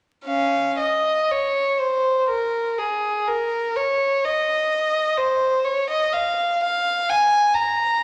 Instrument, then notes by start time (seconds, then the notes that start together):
violin
0.26 C#4 F5
0.79 D#5
1.31 C#5
1.80 C5
2.30 A#4
2.78 G#4
3.28 A#4
3.76 C#5
4.24 D#5
5.18 C5
5.65 C#5
5.90 D#5
6.13 F5
6.63 F5
7.09 G#5
7.54 A#5